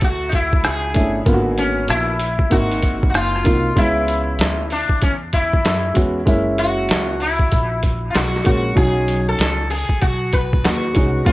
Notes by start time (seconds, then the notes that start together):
0.01 D2 F#4, kick, closed hi-hat
0.29 D#4, closed hi-hat
0.33 E4, kick
0.53 kick
0.64 C#2 G#4, cross-stick, closed hi-hat
0.94 G1 A3 C#4 D4 E4, kick, closed hi-hat
1.25 G#1 D3 A#3 B3 F4, kick, closed hi-hat
1.34 F#4
1.58 C#4, closed hi-hat
1.88 A#1 E4, cross-stick, closed hi-hat
2.20 closed hi-hat
2.39 muted upright bass stroke, kick
2.50 G#1 A#3 C4 D#4 F#4, kick, closed hi-hat
2.72 closed hi-hat
2.83 kick, closed hi-hat
3.03 kick
3.10 F#1 F#4
3.14 F4, cross-stick, closed hi-hat
3.36 cross-stick
3.44 C2 A#3 C4 D#4 F4, kick, closed hi-hat
3.76 C#2 G#3 B3 C#4 E4, kick, closed hi-hat
4.08 closed hi-hat
4.39 D2, snare, closed hi-hat
4.70 D4, open hi-hat
4.89 muted upright bass stroke, kick
5.02 E2 C#4, kick, closed hi-hat
5.33 E4, kick, closed hi-hat
5.53 kick
5.64 F#2, snare, closed hi-hat
5.94 E2 G#3 B3 C#4 F#4, kick, closed hi-hat
6.26 F#1 G#3 A#3 C#4 E4, kick, closed hi-hat
6.58 F#4, closed hi-hat
6.89 C#2, snare, closed hi-hat
7.20 E4, open hi-hat
7.39 kick
7.52 A#1, kick, closed hi-hat
7.83 kick, closed hi-hat
8.10 B1 F4
8.15 F#4, snare, closed hi-hat
8.36 snare
8.44 A#1 G#3 A#3 C#4 F#4, kick, closed hi-hat
8.75 B1 F#3 C#4 D#4 F#4 G#4, kick, closed hi-hat
9.08 closed hi-hat
9.29 A4
9.39 C#2, snare, closed hi-hat
9.70 G#4, open hi-hat
9.89 muted upright bass stroke, kick
10.02 B1 F#4, kick, closed hi-hat
10.33 B4, kick, closed hi-hat
10.53 kick
10.64 D#2 F#4, snare, closed hi-hat
10.94 C2 G#3 C#4 D#4 G#4, kick, closed hi-hat
11.25 C#2 G#3 B3 C#4 F4, kick, closed hi-hat